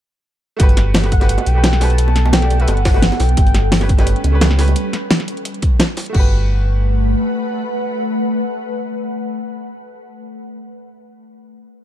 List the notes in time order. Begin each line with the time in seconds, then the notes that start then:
0.57 G1 A3 B3 F#4 A4, kick, closed hi-hat
0.61 G4 B4
0.69 closed hi-hat
0.77 snare, closed hi-hat, high bongo
0.94 snare, closed hi-hat, open hi-hat, high bongo
1.02 A3 F#4 G4 B4, snare, closed hi-hat
1.12 F#5, kick, closed hi-hat
1.20 A3 F#4 G4 B4, snare, closed hi-hat, high bongo
1.29 closed hi-hat
1.38 closed hi-hat, high bongo
1.46 B1 G5, closed hi-hat
1.54 A3 F#4 G4 B4
1.64 snare, closed hi-hat, high bongo
1.73 snare, closed hi-hat
1.78 A3 F#4 A5, snare, closed hi-hat, open hi-hat, high bongo
1.82 G4 B4
1.90 closed hi-hat
1.98 closed hi-hat
2.08 high bongo
2.16 snare, closed hi-hat
2.26 high bongo
2.33 G5, snare, closed hi-hat
2.41 A3 F#4 G4 D5, snare, closed hi-hat
2.50 closed hi-hat, high bongo
2.58 A3 F#4 G4 B4 E5, closed hi-hat
2.68 G1 F#5, closed hi-hat, high bongo
2.77 closed hi-hat
2.85 kick, snare, closed hi-hat, open hi-hat
2.93 A3 F#4 G4 B4, high bongo
3.02 snare, closed hi-hat
3.12 snare, high bongo
3.20 B1 G5, snare, closed hi-hat, open hi-hat
3.29 closed hi-hat
3.37 G1 G3 C#4 B4, kick, closed hi-hat, high bongo
3.47 closed hi-hat
3.54 snare, closed hi-hat, high bongo
3.72 snare, closed hi-hat, open hi-hat
3.80 A3 C#4 G4 B4, snare, closed hi-hat, high bongo
3.89 kick, closed hi-hat
3.97 A3 C#4 G4 B4, snare, closed hi-hat, high bongo
4.07 closed hi-hat
4.16 closed hi-hat
4.24 C#2, closed hi-hat, high bongo
4.32 A3 C#4 G4 B4
4.41 snare, closed hi-hat, high bongo
4.51 snare, closed hi-hat
4.57 A3 C#4 G4 B4, snare, closed hi-hat, open hi-hat
4.68 closed hi-hat, high bongo
4.76 closed hi-hat
4.93 snare, closed hi-hat
5.11 snare, closed hi-hat
5.20 snare, closed hi-hat
5.28 closed hi-hat
5.37 closed hi-hat
5.45 closed hi-hat
5.54 closed hi-hat
5.62 kick, closed hi-hat
5.80 snare, closed hi-hat
5.97 snare, closed hi-hat, open hi-hat
6.06 A3, closed hi-hat
6.13 G1 A3 F#4 G4 B4 F#5, kick, crash
6.19 B4